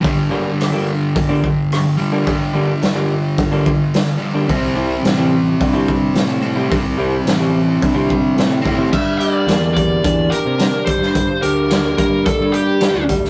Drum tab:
CC |----------------|----------------|----------------|----------------|
HH |o---o---o---o---|o---o---o---o---|o---o---o---o---|o---o---o---o---|
SD |----r-------r---|----o-------o---|----o-------o---|----o-------o---|
BD |o-------o-o-----|o-------o-o-----|o-------o-o-----|o-------o-o---o-|

CC |x---------------|----------------|
HH |--x-x-x-x-x-x-x-|x-x-x-x-x-x-x-x-|
SD |----o-------o--o|----o-------o--o|
BD |o-----o-o-----o-|o-----o-o-----o-|